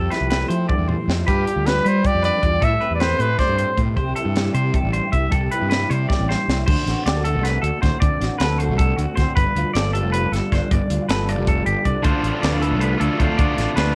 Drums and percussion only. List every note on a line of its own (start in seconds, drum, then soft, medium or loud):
0.12 snare soft
0.12 closed hi-hat medium
0.31 snare loud
0.31 closed hi-hat medium
0.50 closed hi-hat medium
0.69 kick medium
0.69 high tom medium
0.89 mid tom medium
1.10 snare medium
1.28 kick loud
1.28 closed hi-hat medium
1.28 splash medium
1.47 closed hi-hat medium
1.66 snare loud
1.66 closed hi-hat medium
1.86 closed hi-hat medium
2.04 kick loud
2.04 closed hi-hat medium
2.24 closed hi-hat medium
2.43 kick medium
2.43 closed hi-hat medium
2.62 kick loud
2.62 closed hi-hat medium
2.81 closed hi-hat medium
3.00 snare loud
3.00 closed hi-hat medium
3.20 closed hi-hat medium
3.39 kick medium
3.39 snare soft
3.39 closed hi-hat medium
3.59 closed hi-hat medium
3.77 kick medium
3.77 closed hi-hat medium
3.97 kick loud
3.97 closed hi-hat medium
4.16 closed hi-hat medium
4.36 snare loud
4.36 closed hi-hat medium
4.55 closed hi-hat medium
4.74 kick loud
4.74 closed hi-hat medium
4.93 closed hi-hat medium
5.13 kick medium
5.13 closed hi-hat medium
5.32 kick loud
5.32 closed hi-hat medium
5.51 closed hi-hat medium
5.71 snare medium
5.71 closed hi-hat medium
5.91 closed hi-hat medium
6.10 kick medium
6.10 snare medium
6.31 snare medium
6.50 snare medium
6.68 kick loud
6.68 crash loud
6.87 snare soft
6.87 closed hi-hat medium
7.07 snare loud
7.07 closed hi-hat medium
7.25 closed hi-hat medium
7.45 snare soft
7.45 closed hi-hat loud
7.64 closed hi-hat medium
7.83 kick medium
7.83 snare soft
7.83 closed hi-hat medium
8.02 kick loud
8.02 closed hi-hat loud
8.22 snare soft
8.22 closed hi-hat medium
8.40 snare loud
8.40 closed hi-hat medium
8.60 closed hi-hat medium
8.79 kick loud
8.79 closed hi-hat medium
8.99 closed hi-hat medium
9.17 kick medium
9.17 snare soft
9.17 closed hi-hat medium
9.37 kick loud
9.37 closed hi-hat medium
9.56 closed hi-hat medium
9.75 snare loud
9.75 closed hi-hat medium
9.95 closed hi-hat medium
10.14 closed hi-hat medium
10.33 snare soft
10.33 closed hi-hat medium
10.52 kick medium
10.52 snare soft
10.52 closed hi-hat medium
10.71 kick loud
10.71 closed hi-hat loud
10.90 closed hi-hat medium
11.09 snare loud
11.09 closed hi-hat loud
11.29 closed hi-hat medium
11.47 kick loud
11.47 closed hi-hat medium
11.66 closed hi-hat medium
11.85 kick medium
11.85 closed hi-hat medium
12.04 kick loud
12.04 closed hi-hat loud
12.24 closed hi-hat medium
12.43 snare loud
12.43 closed hi-hat medium
12.62 closed hi-hat medium
12.81 closed hi-hat medium
13.01 closed hi-hat medium
13.20 kick medium
13.20 closed hi-hat medium
13.39 kick loud
13.39 closed hi-hat loud
13.58 snare soft
13.58 closed hi-hat medium
13.77 snare loud
13.77 closed hi-hat medium